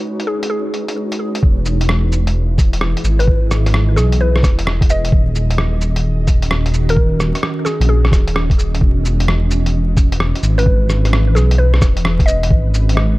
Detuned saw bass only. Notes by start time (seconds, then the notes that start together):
1.43 E1
3.04 G#1
3.96 B1
4.43 E1
5.12 D#1
6.72 D#1
7.80 A#1
8.12 D#1
8.58 D#1
8.81 E1
10.43 G#1
11.34 B1
11.81 E1
12.50 G#1